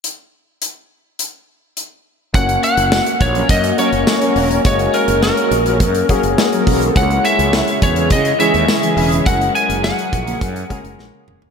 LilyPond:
<<
  \new Staff \with { instrumentName = "Lead electric guitar" } { \time 4/4 \key fis \mixolydian \tempo 4 = 104 r1 | fis''8 fis''4 cis''8 dis''8 cis''4. | cis''8 ais'8 ais'4. r4. | fis''8 e''4 cis''8 dis''8 e''4. |
fis''8 gis''8 fis''4. r4. | }
  \new Staff \with { instrumentName = "Analog polysynth" } { \time 4/4 \key fis \mixolydian r1 | r4. r16 <fis cis' ais'>16 r8 <fis cis' ais'>16 r8 <fis cis' ais'>16 <fis cis' ais'>8 | r4. r16 <fis cis' ais'>16 r8 <fis cis' ais'>16 r8 <fis cis' ais'>16 <e cis' ais'>8~ | <e cis' ais'>16 r4. <e cis' gis'>16 r8 <e cis' gis'>16 r8 <e cis' gis'>16 <e cis' gis'>8 |
r4. r16 <cis ais gis'>16 r8 <cis ais gis'>16 r8 <cis ais gis'>16 <cis ais gis'>8 | }
  \new Staff \with { instrumentName = "Analog synth pad" } { \time 4/4 \key fis \mixolydian << { r1 | <cis' fis'>1~ | <cis' fis'>1 | <cis e' gis'>1 |
<fis ais'>1 | } \\ { r1 | ais1~ | ais1 | cis'1~ |
cis'1 | } >> }
  \new Staff \with { instrumentName = "Grand piano" } { \time 4/4 \key fis \mixolydian r1 | <ais cis' fis' cis''>4. r4 <ais cis' fis' cis''>4 r8 | <gis ais cis' fis' dis''>4. r4 <ais cis' fis' gis'>4 r8 | <gis cis' e' cis''>4. r4 <gis cis' e' cis''>4 r8 |
<gis cis' fis' ais'>4. r4 <gis cis' fis' ais'>4 r8 | }
  \new Staff \with { instrumentName = "Fretless electric bass" } { \clef bass \time 4/4 \key fis \mixolydian r1 | fis,,8 r16 fis,,8 r16 ais,,8 fis,8 r16 fis,,16 r8 e,,8 | fis,,8 r16 fis,,8 r16 ais,,8 fis,8 r16 fis,,16 r8 b,,8 | cis,8 r16 cis,8 r16 e,8 cis8 r16 dis,16 r8 e,,8 |
fis,,8 r16 fis,,8 r16 ais,,8 fis,8 r16 fis,,16 ais,,16 r16 e,,8 | }
  \new DrumStaff \with { instrumentName = "Drums" } \drummode { \time 4/4 hh4 hh4 hh4 hh4 | <hh bd>16 hh16 hh16 hh16 <sn tamb>16 hh16 <hh bd>16 hh16 <hh bd>16 hh16 hh16 hh16 <sn tamb>16 hh16 hho16 hh16 | <hh bd>16 hh16 hh16 hh16 <sn tamb>16 hh16 hh16 hh16 <hh bd>16 hh16 <hh bd>16 hh16 <sn tamb>16 hh16 <hho bd>16 hh16 | <hh bd>16 hh16 hh16 hh16 <sn tamb>16 hh16 <hh bd>16 hh16 <hh bd>16 hh16 hh16 hh16 <sn tamb>16 hh16 hho16 hh16 |
<hh bd>16 hh16 hh16 hh16 <sn tamb>16 hh16 <hh bd>16 hh16 <hh bd>16 hh16 <hh bd>16 hh16 sn8 toml16 tomfh16 | }
>>